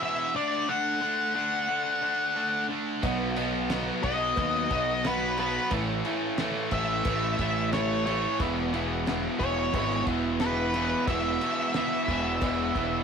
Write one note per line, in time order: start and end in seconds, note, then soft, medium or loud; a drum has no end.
0.00 0.32 E2 medium
0.00 0.33 B2 medium
0.00 0.33 E3 medium
0.00 0.36 E5 loud
0.34 0.67 D3 medium
0.34 0.67 A3 loud
0.34 0.68 D4 loud
0.34 0.70 D5 medium
0.68 1.00 D3 medium
0.68 1.00 A3 medium
0.68 1.01 D4 loud
0.68 2.66 F#5 medium
1.01 1.34 D3 medium
1.01 1.35 A3 medium
1.01 1.35 D4 medium
1.35 1.67 D3 medium
1.35 1.68 A3 medium
1.35 1.68 D4 medium
1.68 2.00 D3 medium
1.68 2.01 A3 loud
1.68 2.01 D4 loud
2.01 2.34 D3 medium
2.01 2.35 A3 medium
2.01 2.36 D4 loud
2.36 2.68 D3 medium
2.36 2.69 A3 medium
2.36 2.70 D4 medium
2.69 3.01 D3 medium
2.69 3.01 A3 medium
2.69 3.02 D4 medium
3.03 3.90 B1 loud
3.03 3.37 B2 medium
3.03 3.36 B2 loud
3.03 3.37 F#3 loud
3.03 3.36 F#3 loud
3.03 3.37 B3 loud
3.03 3.30 D#4 loud
3.03 3.37 D#4 loud
3.03 3.30 F#4 loud
3.03 3.35 F#4 loud
3.03 3.30 B4 loud
3.03 3.30 D#5 loud
3.03 kick loud
3.03 cowbell loud
3.03 crash medium
3.36 3.69 B2 medium
3.36 3.70 F#3 medium
3.36 3.70 B3 medium
3.36 3.70 B3 soft
3.36 3.63 D#4 medium
3.36 3.71 D#4 soft
3.36 3.63 F#4 medium
3.36 3.70 F#4 medium
3.36 3.64 B4 medium
3.36 3.64 D#5 loud
3.36 crash medium
3.70 4.03 B2 medium
3.70 4.04 F#3 medium
3.70 4.04 B3 loud
3.70 4.04 B3 medium
3.70 3.97 D#4 medium
3.70 4.04 D#4 medium
3.70 3.97 F#4 medium
3.70 4.02 F#4 medium
3.70 3.97 B4 medium
3.70 3.98 D#5 medium
3.70 snare loud
3.70 cowbell medium
3.70 crash medium
4.03 4.33 B1 medium
4.03 4.36 B2 medium
4.03 4.36 F#3 medium
4.03 4.37 B3 medium
4.03 4.37 B3 soft
4.03 4.31 D#4 medium
4.03 4.38 D#4 soft
4.03 4.37 F#4 medium
4.03 4.31 F#4 medium
4.03 4.31 B4 medium
4.03 5.07 D#5 loud
4.03 4.31 D#5 medium
4.03 kick medium
4.03 crash medium
4.36 4.66 D#2 loud
4.36 4.69 B2 loud
4.36 5.05 B2 medium
4.36 4.70 F#3 loud
4.36 5.02 F#3 medium
4.36 4.71 B3 loud
4.36 5.02 B3 medium
4.36 4.65 D#4 medium
4.36 5.04 D#4 medium
4.36 4.65 F#4 medium
4.36 5.05 F#4 medium
4.36 4.65 B4 medium
4.36 4.65 D#5 medium
4.36 kick loud
4.36 cowbell medium
4.36 crash medium
4.54 snare soft
4.70 5.57 B1 medium
4.70 5.03 B2 medium
4.70 5.03 F#3 medium
4.70 5.04 B3 medium
4.70 4.98 D#4 loud
4.70 4.98 F#4 medium
4.70 4.98 B4 medium
4.70 4.98 D#5 loud
4.70 kick medium
4.70 crash medium
5.03 5.37 B2 medium
5.03 5.71 F#3 medium
5.03 5.38 F#3 medium
5.03 5.71 B3 medium
5.03 5.38 B3 loud
5.03 5.31 D#4 loud
5.03 5.72 D#4 medium
5.03 5.31 F#4 medium
5.03 5.72 F#4 medium
5.03 5.31 B4 loud
5.03 5.37 B4 medium
5.03 5.31 D#5 loud
5.03 snare loud
5.03 cowbell medium
5.03 crash medium
5.38 5.70 B2 medium
5.38 5.70 F#3 medium
5.38 5.70 B3 medium
5.38 5.65 D#4 medium
5.38 5.65 F#4 medium
5.38 5.65 B4 medium
5.38 5.70 B4 medium
5.38 5.65 D#5 medium
5.38 crash medium
5.71 6.01 A1 loud
5.71 6.05 A2 medium
5.71 6.04 A2 loud
5.71 6.05 E3 medium
5.71 6.05 E3 loud
5.71 6.06 A3 medium
5.71 6.05 A3 loud
5.71 6.06 C#4 medium
5.71 5.98 E4 loud
5.71 6.04 E4 medium
5.71 5.99 A4 medium
5.71 5.99 C#5 medium
5.71 5.99 E5 loud
5.71 kick loud
5.71 cowbell loud
5.71 crash medium
6.05 6.37 A2 medium
6.05 6.39 E3 loud
6.05 6.39 A3 medium
6.05 6.39 C#4 medium
6.05 6.39 E4 medium
6.05 6.32 E4 medium
6.05 6.32 A4 medium
6.05 6.32 C#5 medium
6.05 6.32 E5 loud
6.05 crash medium
6.09 6.38 A3 medium
6.38 6.71 A2 medium
6.38 6.72 E3 medium
6.38 6.73 A3 medium
6.38 6.72 A3 loud
6.38 6.73 C#4 medium
6.38 6.66 E4 medium
6.38 6.71 E4 medium
6.38 6.66 A4 medium
6.38 6.66 C#5 medium
6.38 6.66 E5 medium
6.38 snare loud
6.38 cowbell medium
6.38 crash medium
6.71 7.01 A1 loud
6.71 7.04 A2 medium
6.71 7.06 E3 medium
6.71 7.06 A3 medium
6.71 7.07 C#4 soft
6.71 7.06 E4 medium
6.71 6.99 E4 medium
6.71 6.99 A4 medium
6.71 6.99 C#5 medium
6.71 7.69 E5 loud
6.71 6.99 E5 medium
6.71 kick medium
6.71 crash medium
6.76 7.06 A3 soft
7.05 7.34 A1 medium
7.05 7.38 A2 loud
7.05 7.73 A2 medium
7.05 7.40 E3 loud
7.05 7.72 E3 medium
7.05 7.39 A3 loud
7.05 7.73 A3 medium
7.05 7.74 C#4 medium
7.05 7.33 E4 medium
7.05 7.76 E4 medium
7.05 7.33 A4 medium
7.05 7.33 C#5 medium
7.05 7.33 E5 medium
7.05 kick loud
7.05 cowbell loud
7.05 crash medium
7.39 8.26 A1 medium
7.39 7.72 A2 medium
7.39 7.73 E3 medium
7.39 7.73 A3 loud
7.39 7.66 E4 loud
7.39 7.66 A4 medium
7.39 7.66 C#5 medium
7.39 7.66 E5 loud
7.39 kick medium
7.39 crash medium
7.72 8.06 A2 medium
7.72 8.06 E3 medium
7.72 8.07 E3 medium
7.72 8.07 A3 medium
7.72 8.07 C#4 medium
7.72 8.00 E4 loud
7.72 8.06 E4 medium
7.72 8.00 A4 medium
7.72 8.05 C#5 medium
7.72 8.00 C#5 medium
7.72 8.00 E5 loud
7.72 snare loud
7.72 cowbell medium
7.72 crash medium
8.06 8.38 A2 medium
8.06 8.41 E3 loud
8.06 8.39 A3 loud
8.06 8.41 C#4 medium
8.06 8.33 E4 medium
8.06 8.40 E4 medium
8.06 8.33 A4 medium
8.06 8.37 C#5 medium
8.06 8.33 C#5 medium
8.06 8.33 E5 medium
8.06 crash medium
8.10 8.41 A3 soft
8.39 9.26 E1 loud
8.39 8.73 E2 medium
8.39 8.73 E2 loud
8.39 8.73 B2 loud
8.39 8.74 B2 medium
8.39 8.74 E3 medium
8.39 8.74 E3 loud
8.39 8.74 G#3 medium
8.39 8.74 B3 medium
8.39 8.66 E4 loud
8.39 8.72 E4 loud
8.39 8.67 G#4 medium
8.39 8.67 B4 medium
8.39 8.67 E5 loud
8.39 kick loud
8.39 cowbell medium
8.39 crash medium
8.73 9.07 E2 medium
8.73 9.07 B2 medium
8.73 9.08 E3 loud
8.73 9.05 E3 soft
8.73 9.06 G#3 medium
8.73 9.08 B3 medium
8.73 9.00 E4 loud
8.73 9.07 E4 medium
8.73 9.00 G#4 medium
8.73 9.00 B4 medium
8.73 9.00 E5 loud
8.73 crash medium
9.06 9.41 E2 medium
9.06 9.41 B2 loud
9.06 9.40 E3 medium
9.06 9.42 E3 loud
9.06 9.41 G#3 medium
9.06 9.41 B3 medium
9.06 9.34 E4 medium
9.06 9.39 E4 medium
9.06 9.34 G#4 medium
9.06 9.34 B4 medium
9.06 9.34 E5 loud
9.06 snare loud
9.06 cowbell medium
9.06 crash medium
9.40 9.69 E1 loud
9.40 9.73 E2 medium
9.40 9.74 B2 medium
9.40 9.74 E3 loud
9.40 9.74 E3 soft
9.40 9.75 G#3 soft
9.40 9.75 B3 soft
9.40 9.67 E4 medium
9.40 9.74 E4 medium
9.40 9.67 G#4 medium
9.40 9.67 B4 medium
9.40 10.03 C#5 loud
9.40 9.67 E5 medium
9.40 kick medium
9.40 crash medium
9.73 10.03 G#1 loud
9.73 10.41 E2 medium
9.73 10.06 E2 loud
9.73 10.07 B2 loud
9.73 10.42 B2 medium
9.73 10.07 E3 loud
9.73 10.39 E3 medium
9.73 10.40 G#3 medium
9.73 10.42 B3 medium
9.73 10.00 E4 medium
9.73 10.42 E4 loud
9.73 10.00 G#4 medium
9.73 10.00 B4 medium
9.73 10.01 E5 medium
9.73 kick loud
9.73 cowbell loud
9.73 crash medium
9.90 snare soft
10.07 10.93 E1 medium
10.07 10.40 E2 medium
10.07 10.41 B2 medium
10.07 10.42 E3 medium
10.07 10.34 E4 loud
10.07 10.34 G#4 loud
10.07 10.34 B4 medium
10.07 10.34 E5 loud
10.07 kick medium
10.07 crash medium
10.40 10.74 E2 medium
10.40 10.74 B2 medium
10.40 10.74 E3 medium
10.40 10.75 G#3 medium
10.40 10.74 B3 medium
10.40 10.68 E4 loud
10.40 10.68 G#4 medium
10.40 11.04 B4 medium
10.40 10.68 B4 medium
10.40 10.68 E5 loud
10.40 snare loud
10.40 cowbell medium
10.40 crash medium
10.44 10.74 E4 medium
10.74 11.06 E2 medium
10.74 11.06 B2 medium
10.74 11.07 E3 medium
10.74 11.08 G#3 soft
10.74 11.09 B3 soft
10.74 11.01 E4 medium
10.74 11.08 E4 soft
10.74 11.01 G#4 medium
10.74 11.02 B4 medium
10.74 11.01 E5 medium
10.74 crash medium
10.78 11.08 E3 soft
11.07 11.36 E1 loud
11.07 11.41 E2 loud
11.07 11.42 E2 medium
11.07 11.41 B2 loud
11.07 11.42 B2 medium
11.07 11.42 E3 medium
11.07 11.42 E3 loud
11.07 11.42 G#3 medium
11.07 11.42 B3 medium
11.07 11.35 E4 medium
11.07 11.41 E4 medium
11.07 11.35 G#4 medium
11.07 11.35 B4 medium
11.07 13.03 E5 loud
11.07 11.35 E5 loud
11.07 kick loud
11.07 cowbell loud
11.07 crash medium
11.40 11.74 E2 medium
11.40 11.75 B2 medium
11.40 11.75 E3 medium
11.40 11.74 G#3 soft
11.40 11.75 B3 medium
11.40 11.68 E4 medium
11.40 11.75 E4 medium
11.40 11.68 G#4 medium
11.40 11.68 B4 medium
11.40 11.68 E5 medium
11.40 crash medium
11.45 11.73 E3 soft
11.73 12.07 E2 loud
11.73 12.08 B2 medium
11.73 12.41 E3 medium
11.73 12.09 E3 loud
11.73 12.42 G#3 medium
11.73 12.43 B3 medium
11.73 12.01 E4 medium
11.73 12.01 G#4 medium
11.73 12.02 B4 medium
11.73 12.01 E5 medium
11.73 snare loud
11.73 cowbell medium
11.73 crash medium
11.78 12.43 E4 medium
12.06 12.37 E1 loud
12.06 12.41 E2 medium
12.06 12.42 B2 medium
12.06 12.42 E3 medium
12.06 12.35 E4 medium
12.06 12.34 G#4 medium
12.06 12.35 B4 medium
12.06 12.35 E5 medium
12.06 kick medium
12.06 crash medium
12.41 12.71 E1 medium
12.41 13.03 E2 medium
12.41 12.75 E2 medium
12.41 13.03 B2 medium
12.41 12.76 B2 medium
12.41 13.03 E3 medium
12.41 12.77 E3 loud
12.41 13.03 G#3 loud
12.41 13.03 B3 loud
12.41 12.68 E4 medium
12.41 13.03 E4 medium
12.41 12.68 G#4 medium
12.41 12.69 B4 medium
12.41 12.69 E5 medium
12.41 kick loud
12.41 cowbell loud
12.41 crash medium
12.75 13.03 E1 medium
12.75 13.03 E2 medium
12.75 13.03 B2 medium
12.75 13.03 E3 medium
12.75 13.02 E4 loud
12.75 13.02 G#4 loud
12.75 13.02 B4 loud
12.75 13.02 E5 loud
12.75 kick medium
12.75 crash medium